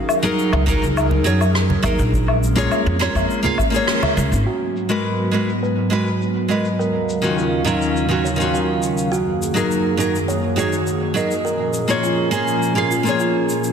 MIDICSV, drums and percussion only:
0, 0, Header, 1, 2, 480
1, 0, Start_track
1, 0, Tempo, 582524
1, 1756, Time_signature, 4, 2, 24, 8
1, 11309, End_track
2, 0, Start_track
2, 0, Title_t, "Drums"
2, 72, Note_on_c, 9, 77, 75
2, 82, Note_on_c, 9, 82, 83
2, 155, Note_off_c, 9, 77, 0
2, 164, Note_off_c, 9, 82, 0
2, 198, Note_on_c, 9, 82, 57
2, 201, Note_on_c, 9, 63, 82
2, 280, Note_off_c, 9, 82, 0
2, 283, Note_off_c, 9, 63, 0
2, 322, Note_on_c, 9, 82, 49
2, 404, Note_off_c, 9, 82, 0
2, 434, Note_on_c, 9, 77, 81
2, 516, Note_off_c, 9, 77, 0
2, 554, Note_on_c, 9, 36, 99
2, 563, Note_on_c, 9, 82, 87
2, 637, Note_off_c, 9, 36, 0
2, 646, Note_off_c, 9, 82, 0
2, 689, Note_on_c, 9, 82, 55
2, 771, Note_off_c, 9, 82, 0
2, 801, Note_on_c, 9, 77, 74
2, 804, Note_on_c, 9, 82, 47
2, 883, Note_off_c, 9, 77, 0
2, 886, Note_off_c, 9, 82, 0
2, 914, Note_on_c, 9, 63, 60
2, 915, Note_on_c, 9, 64, 61
2, 996, Note_off_c, 9, 63, 0
2, 997, Note_off_c, 9, 64, 0
2, 1038, Note_on_c, 9, 82, 79
2, 1121, Note_off_c, 9, 82, 0
2, 1161, Note_on_c, 9, 77, 70
2, 1166, Note_on_c, 9, 82, 57
2, 1243, Note_off_c, 9, 77, 0
2, 1249, Note_off_c, 9, 82, 0
2, 1278, Note_on_c, 9, 37, 73
2, 1288, Note_on_c, 9, 82, 43
2, 1361, Note_off_c, 9, 37, 0
2, 1370, Note_off_c, 9, 82, 0
2, 1401, Note_on_c, 9, 64, 73
2, 1483, Note_off_c, 9, 64, 0
2, 1512, Note_on_c, 9, 77, 72
2, 1514, Note_on_c, 9, 63, 76
2, 1515, Note_on_c, 9, 36, 98
2, 1521, Note_on_c, 9, 82, 82
2, 1595, Note_off_c, 9, 77, 0
2, 1596, Note_off_c, 9, 63, 0
2, 1597, Note_off_c, 9, 36, 0
2, 1603, Note_off_c, 9, 82, 0
2, 1638, Note_on_c, 9, 82, 57
2, 1721, Note_off_c, 9, 82, 0
2, 1755, Note_on_c, 9, 36, 106
2, 1766, Note_on_c, 9, 82, 46
2, 1837, Note_off_c, 9, 36, 0
2, 1848, Note_off_c, 9, 82, 0
2, 1881, Note_on_c, 9, 77, 70
2, 1963, Note_off_c, 9, 77, 0
2, 2006, Note_on_c, 9, 82, 74
2, 2088, Note_off_c, 9, 82, 0
2, 2114, Note_on_c, 9, 63, 84
2, 2127, Note_on_c, 9, 82, 53
2, 2196, Note_off_c, 9, 63, 0
2, 2210, Note_off_c, 9, 82, 0
2, 2237, Note_on_c, 9, 77, 79
2, 2240, Note_on_c, 9, 82, 46
2, 2319, Note_off_c, 9, 77, 0
2, 2322, Note_off_c, 9, 82, 0
2, 2481, Note_on_c, 9, 37, 74
2, 2481, Note_on_c, 9, 82, 75
2, 2564, Note_off_c, 9, 37, 0
2, 2564, Note_off_c, 9, 82, 0
2, 2596, Note_on_c, 9, 36, 56
2, 2603, Note_on_c, 9, 77, 73
2, 2607, Note_on_c, 9, 82, 55
2, 2679, Note_off_c, 9, 36, 0
2, 2685, Note_off_c, 9, 77, 0
2, 2689, Note_off_c, 9, 82, 0
2, 2723, Note_on_c, 9, 82, 47
2, 2805, Note_off_c, 9, 82, 0
2, 2832, Note_on_c, 9, 63, 56
2, 2838, Note_on_c, 9, 64, 70
2, 2914, Note_off_c, 9, 63, 0
2, 2921, Note_off_c, 9, 64, 0
2, 2949, Note_on_c, 9, 77, 75
2, 2955, Note_on_c, 9, 36, 94
2, 2965, Note_on_c, 9, 82, 88
2, 3031, Note_off_c, 9, 77, 0
2, 3037, Note_off_c, 9, 36, 0
2, 3048, Note_off_c, 9, 82, 0
2, 3082, Note_on_c, 9, 82, 61
2, 3165, Note_off_c, 9, 82, 0
2, 3193, Note_on_c, 9, 37, 78
2, 3203, Note_on_c, 9, 82, 50
2, 3275, Note_off_c, 9, 37, 0
2, 3285, Note_off_c, 9, 82, 0
2, 3318, Note_on_c, 9, 64, 80
2, 3318, Note_on_c, 9, 77, 81
2, 3401, Note_off_c, 9, 64, 0
2, 3401, Note_off_c, 9, 77, 0
2, 3437, Note_on_c, 9, 63, 79
2, 3444, Note_on_c, 9, 82, 74
2, 3519, Note_off_c, 9, 63, 0
2, 3526, Note_off_c, 9, 82, 0
2, 3567, Note_on_c, 9, 82, 55
2, 3649, Note_off_c, 9, 82, 0
2, 3681, Note_on_c, 9, 82, 43
2, 3763, Note_off_c, 9, 82, 0
2, 3925, Note_on_c, 9, 82, 79
2, 4008, Note_off_c, 9, 82, 0
2, 4050, Note_on_c, 9, 82, 48
2, 4133, Note_off_c, 9, 82, 0
2, 4168, Note_on_c, 9, 82, 40
2, 4251, Note_off_c, 9, 82, 0
2, 4396, Note_on_c, 9, 82, 66
2, 4478, Note_off_c, 9, 82, 0
2, 4524, Note_on_c, 9, 82, 50
2, 4607, Note_off_c, 9, 82, 0
2, 4647, Note_on_c, 9, 82, 42
2, 4729, Note_off_c, 9, 82, 0
2, 4884, Note_on_c, 9, 82, 81
2, 4966, Note_off_c, 9, 82, 0
2, 5002, Note_on_c, 9, 82, 42
2, 5084, Note_off_c, 9, 82, 0
2, 5122, Note_on_c, 9, 82, 42
2, 5204, Note_off_c, 9, 82, 0
2, 5363, Note_on_c, 9, 82, 65
2, 5446, Note_off_c, 9, 82, 0
2, 5478, Note_on_c, 9, 82, 54
2, 5561, Note_off_c, 9, 82, 0
2, 5609, Note_on_c, 9, 82, 38
2, 5691, Note_off_c, 9, 82, 0
2, 5846, Note_on_c, 9, 82, 75
2, 5928, Note_off_c, 9, 82, 0
2, 5961, Note_on_c, 9, 82, 54
2, 6044, Note_off_c, 9, 82, 0
2, 6084, Note_on_c, 9, 82, 41
2, 6166, Note_off_c, 9, 82, 0
2, 6321, Note_on_c, 9, 82, 75
2, 6403, Note_off_c, 9, 82, 0
2, 6442, Note_on_c, 9, 82, 54
2, 6525, Note_off_c, 9, 82, 0
2, 6562, Note_on_c, 9, 82, 40
2, 6645, Note_off_c, 9, 82, 0
2, 6805, Note_on_c, 9, 82, 70
2, 6887, Note_off_c, 9, 82, 0
2, 6925, Note_on_c, 9, 82, 49
2, 7007, Note_off_c, 9, 82, 0
2, 7044, Note_on_c, 9, 82, 41
2, 7126, Note_off_c, 9, 82, 0
2, 7275, Note_on_c, 9, 82, 71
2, 7357, Note_off_c, 9, 82, 0
2, 7398, Note_on_c, 9, 82, 51
2, 7480, Note_off_c, 9, 82, 0
2, 7525, Note_on_c, 9, 82, 45
2, 7607, Note_off_c, 9, 82, 0
2, 7767, Note_on_c, 9, 82, 80
2, 7850, Note_off_c, 9, 82, 0
2, 7883, Note_on_c, 9, 82, 54
2, 7965, Note_off_c, 9, 82, 0
2, 8004, Note_on_c, 9, 82, 43
2, 8086, Note_off_c, 9, 82, 0
2, 8242, Note_on_c, 9, 82, 80
2, 8325, Note_off_c, 9, 82, 0
2, 8367, Note_on_c, 9, 82, 52
2, 8449, Note_off_c, 9, 82, 0
2, 8481, Note_on_c, 9, 82, 51
2, 8564, Note_off_c, 9, 82, 0
2, 8723, Note_on_c, 9, 82, 77
2, 8806, Note_off_c, 9, 82, 0
2, 8839, Note_on_c, 9, 82, 45
2, 8921, Note_off_c, 9, 82, 0
2, 8957, Note_on_c, 9, 82, 45
2, 9040, Note_off_c, 9, 82, 0
2, 9203, Note_on_c, 9, 82, 84
2, 9285, Note_off_c, 9, 82, 0
2, 9320, Note_on_c, 9, 82, 50
2, 9403, Note_off_c, 9, 82, 0
2, 9448, Note_on_c, 9, 82, 41
2, 9530, Note_off_c, 9, 82, 0
2, 9672, Note_on_c, 9, 82, 72
2, 9754, Note_off_c, 9, 82, 0
2, 9799, Note_on_c, 9, 82, 56
2, 9881, Note_off_c, 9, 82, 0
2, 9919, Note_on_c, 9, 82, 42
2, 10002, Note_off_c, 9, 82, 0
2, 10157, Note_on_c, 9, 82, 76
2, 10240, Note_off_c, 9, 82, 0
2, 10282, Note_on_c, 9, 82, 52
2, 10364, Note_off_c, 9, 82, 0
2, 10404, Note_on_c, 9, 82, 50
2, 10486, Note_off_c, 9, 82, 0
2, 10643, Note_on_c, 9, 82, 83
2, 10725, Note_off_c, 9, 82, 0
2, 10764, Note_on_c, 9, 82, 51
2, 10846, Note_off_c, 9, 82, 0
2, 10874, Note_on_c, 9, 82, 39
2, 10956, Note_off_c, 9, 82, 0
2, 11120, Note_on_c, 9, 82, 71
2, 11203, Note_off_c, 9, 82, 0
2, 11238, Note_on_c, 9, 82, 55
2, 11309, Note_off_c, 9, 82, 0
2, 11309, End_track
0, 0, End_of_file